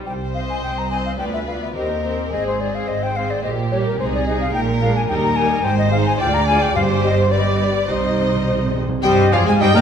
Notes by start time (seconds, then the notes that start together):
0.06 C2 C5 G5
0.34 C4 C5 D#5 F5
0.50 G#5
0.63 C2 G5
0.78 A#5
0.91 C4 C5 D#5 G#5
1.06 F5
1.19 D2 B3 F4 B4 D5 G5
1.34 E5
1.47 B3 F4 D5 F5
1.62 E5
1.75 D#2 C4 G4 A#4 C5 D#5
2.04 C4 G4 C5
2.31 G#1 G#2 C4 G#4 C5 D#5
2.47 C5
2.59 C4 G#4 C5 D5
2.75 F5
2.88 G#1 G#2 C5 D#5
3.03 G5
3.16 C4 G#4 C5 F5
3.30 D5
3.43 A#1 A#2 G4 D#5
3.71 G3 G4 A#4 C#5
3.86 A#4
3.99 C2 C3 G#3 D#4 G#4 C5
4.14 D5
4.26 G#3 D#4 G#4 D#5
4.40 F5
4.54 A#1 A#2 A#4 G5
4.82 G#3 D4 A#4 F5
4.96 G#5
5.09 D#2 G3 D#4 A#4 G5
5.23 A#5
5.36 G3 D#4 A#4 G#5
5.64 G#1 G#2 C5 G5
5.79 D#5
5.92 G#3 D#4 C5 F5
6.07 G#5
6.20 D2 G#3 F4 D5 G5
6.34 A#5
6.47 G#3 F4 D5 G#5
6.62 G5
6.76 G1 G2 G3 G4 C5 F5
7.04 D#5
7.19 C5
7.32 G3 G4 B4 D5
7.40 D#5
7.48 D5
7.56 D#5
7.64 D5
7.89 C2 C3 G3 D#4 C5 D#5
7.98 C3
8.13 C3
8.20 C3
8.28 C3
8.36 C3
8.43 C3
8.51 C3
8.58 C3
8.66 C3
8.74 C3
8.81 C3
8.89 C3
9.03 G2 G3 G4 C5 D#5 G5
9.32 F2 F3 F4 G#4 D5 F5
9.46 G#2 G#3 G#4 C5 F5 G#5
9.59 G2 G3 D#4 G4 C5 D#5 G5
9.74 A#2 A#3 A#4 D5 G5 A#5